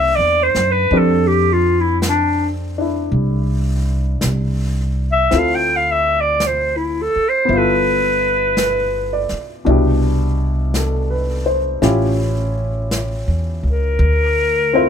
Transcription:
0.00 0.14 C2 medium
0.00 0.89 A#3 soft
0.00 0.91 D4 soft
0.00 0.93 E4 soft
0.00 0.92 G4 medium
0.00 0.17 E5 medium
0.16 0.52 E2 medium
0.16 0.45 D5 medium
0.43 0.73 C5 medium
0.55 0.89 F#2 medium
0.55 snare soft
0.71 0.99 B4 medium
0.91 3.07 F2 medium
0.91 5.29 C4 soft
0.91 2.77 D4 soft
0.91 5.31 G4 soft
0.91 5.31 A4 soft
0.91 brush sweep soft
0.98 1.28 A4 medium
1.27 1.54 G4 medium
1.53 1.82 F4 medium
1.81 2.00 E4 medium
2.02 brush sweep soft
2.02 snare soft
2.02 hi-hat pedal medium
2.09 2.52 D4 medium
2.78 5.31 D4 soft
2.78 5.30 E4 soft
3.12 4.17 C2 medium
3.12 brush sweep soft
4.21 5.27 C2 medium
4.21 brush sweep soft
4.21 snare soft
4.21 hi-hat pedal soft
5.12 5.40 E5 medium
5.31 7.10 D2 medium
5.31 7.48 C4 soft
5.31 7.48 E4 soft
5.31 7.50 F4 soft
5.31 brush sweep soft
5.31 snare soft
5.36 7.50 A4 medium
5.36 5.57 F5 medium
5.55 5.78 G5 medium
5.76 5.93 F5 medium
5.91 6.22 E5 medium
6.21 6.48 D5 medium
6.40 brush sweep soft
6.40 snare soft
6.40 hi-hat pedal medium
6.47 6.78 C5 medium
6.76 7.04 E4 soft
7.02 7.30 A4 medium
7.16 muted upright bass stroke soft
7.29 7.58 C5 medium
7.45 9.27 G1 medium
7.45 9.63 B3 soft
7.45 brush sweep soft
7.49 9.65 E4 soft
7.49 9.67 F4 medium
7.57 9.69 A4 medium
7.57 9.35 B4 medium
8.57 9.45 B4 soft
8.57 brush sweep soft
8.57 snare soft
8.57 hi-hat pedal soft
9.13 9.89 D5 soft
9.29 muted upright bass stroke soft
9.29 snare soft
9.65 11.79 C2 medium
9.65 11.82 B2 medium
9.65 11.83 D4 soft
9.65 11.80 E4 soft
9.65 brush sweep soft
9.70 11.82 G4 medium
10.74 11.45 A4 soft
10.74 brush sweep soft
10.74 snare soft
10.74 hi-hat pedal soft
11.10 11.67 B4 soft
11.46 12.03 C5 soft
11.82 13.23 A1 medium
11.82 13.99 C#4 medium
11.82 13.99 E4 medium
11.82 14.00 F4 soft
11.82 14.00 G4 medium
11.82 brush sweep soft
11.82 snare soft
12.91 brush sweep soft
12.91 snare soft
12.91 hi-hat pedal soft
13.28 13.61 E2 medium
13.63 13.97 C#2 medium
13.70 14.89 A#4 medium
13.99 14.89 D2 medium
13.99 brush sweep soft
14.73 14.89 C4 medium
14.73 14.89 E4 soft
14.73 14.89 F4 soft
14.73 14.89 C5 medium

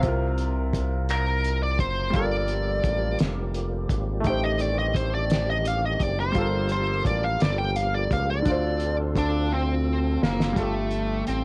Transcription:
0.00 2.08 C3 medium
0.00 2.10 C4 medium
0.00 kick loud
0.00 closed hi-hat medium
0.05 1.81 C2 loud
0.05 2.11 F4 medium
0.09 2.13 A#4 medium
0.38 closed hi-hat soft
0.73 kick medium
0.73 closed hi-hat soft
1.09 1.63 A#4 medium
1.09 finger snap medium
1.09 closed hi-hat medium
1.44 closed hi-hat medium
1.63 1.80 D5 medium
1.79 2.11 F#1 medium
1.79 2.16 C5 medium
1.79 kick medium
1.79 closed hi-hat soft
2.10 4.19 G3 medium
2.10 4.20 F4 medium
2.10 kick loud
2.10 closed hi-hat medium
2.14 2.81 G1 loud
2.14 4.23 F3 medium
2.14 8.42 G3 medium
2.14 4.23 A#3 medium
2.14 8.42 G4 medium
2.14 4.22 A4 medium
2.14 3.16 D5 medium
2.20 4.23 A#4 medium
2.48 closed hi-hat soft
2.84 3.16 A1 medium
2.84 kick medium
2.84 closed hi-hat soft
3.19 3.86 F1 loud
3.19 snare loud
3.19 closed hi-hat medium
3.54 closed hi-hat medium
3.89 4.22 G#1 medium
3.89 kick medium
3.89 closed hi-hat soft
4.20 6.33 D#3 medium
4.20 6.29 A3 medium
4.20 6.31 D#4 medium
4.20 closed hi-hat medium
4.24 5.96 A1 loud
4.24 6.33 C4 medium
4.24 6.32 G4 medium
4.24 4.44 G5 loud
4.24 kick loud
4.30 6.34 C5 medium
4.44 4.61 D#5 medium
4.59 4.78 D5 medium
4.59 closed hi-hat soft
4.79 4.96 D#5 medium
4.95 5.14 C5 medium
4.95 kick medium
4.95 closed hi-hat soft
5.15 5.50 D5 medium
5.30 snare loud
5.30 closed hi-hat medium
5.50 5.65 D#5 medium
5.65 5.84 F5 medium
5.65 closed hi-hat medium
5.85 6.02 D#5 medium
6.00 6.32 F#1 medium
6.00 6.19 D5 medium
6.00 kick medium
6.00 closed hi-hat soft
6.20 6.71 C5 medium
6.32 8.44 F3 medium
6.32 8.40 G3 medium
6.32 8.44 A#3 medium
6.32 8.42 F4 medium
6.32 kick loud
6.32 closed hi-hat medium
6.36 7.02 G1 loud
6.36 8.43 A4 medium
6.41 8.45 A#4 medium
6.69 7.04 C5 medium
6.69 closed hi-hat soft
7.05 7.37 A1 medium
7.05 7.24 D5 medium
7.05 kick medium
7.05 closed hi-hat soft
7.24 7.42 F5 medium
7.40 8.07 G1 loud
7.40 7.58 D5 medium
7.40 snare loud
7.40 closed hi-hat medium
7.58 7.76 G5 medium
7.76 7.94 F5 medium
7.76 closed hi-hat medium
7.94 8.12 D5 medium
8.11 8.43 C#2 medium
8.11 8.28 F5 medium
8.11 kick medium
8.11 closed hi-hat soft
8.30 8.95 D5 medium
8.42 10.51 D3 medium
8.42 10.54 C4 medium
8.42 10.52 D4 medium
8.42 10.54 A4 medium
8.42 kick loud
8.42 closed hi-hat medium
8.47 10.18 D2 medium
8.47 10.55 D3 medium
8.47 10.55 F4 medium
8.47 10.54 F4 medium
8.52 10.55 C5 medium
8.80 closed hi-hat soft
9.16 9.53 D4 medium
9.16 kick medium
9.16 closed hi-hat soft
9.52 10.23 C4 medium
10.22 10.53 F#1 medium
10.22 10.57 A#3 medium
10.22 snare medium
10.40 snare medium
10.53 11.44 G3 medium
10.53 11.44 F4 medium
10.53 kick medium
10.53 closed hi-hat soft
10.57 11.23 G1 medium
10.57 11.23 A3 medium
10.57 11.44 A4 medium
10.63 11.44 G4 medium
10.91 closed hi-hat soft
11.27 11.44 A1 medium
11.27 11.44 C4 medium
11.27 closed hi-hat soft

